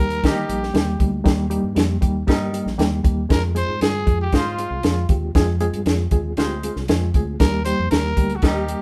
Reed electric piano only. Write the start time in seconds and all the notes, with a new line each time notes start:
Already playing: G3 A#3 D#4
0.00 G4
0.23 G3 A#3 D#4 G4
0.48 G3 A#3 D#4 G4
0.74 G3 A#3 D#4 G4
0.99 G3 A#3 D#4 G4
1.24 G3 A#3 D#4 G4
1.50 G3 A#3 D#4 G4
1.75 G3 A#3 D#4 G4
2.01 G3 A#3 D#4 G4
2.27 G3 A#3 D#4 G4
2.53 G3 A#3 D#4 G4
2.78 G3 A#3 D#4 G4
3.03 G3 A#3 D#4 G4
3.29 G#3 C4 F4 G#4
3.55 G#3 C4 F4 G#4
3.80 G#3 C4 F4 G#4
4.06 G#3 C4 F4 G#4
4.33 G#3 C4 F4 G#4
4.58 G#3 C4 F4 G#4
4.83 G#3 C4 F4 G#4
5.09 G#3 C4 F4 G4
5.35 G#3 C4 F4 G#4
5.61 G#3 C4 F4 G#4
5.86 G#3 C4 F4 G#4
6.12 G#3 C4 F4 G#4
6.38 G#3 C4 F4 G4
6.63 G#3 C4 F4 G#4
6.89 G#3 C4 F4 G#4
7.15 G#3 C4 F4 G#4
7.40 G3 A#3 D#4 G4
7.65 G3 A#3 D#4 G4
7.92 G3 A#3 D#4 G4
8.16 G3 A#3 D#4 G4
8.43 G3 A#3 D#4 G4
8.69 G3 A#3 D#4 G4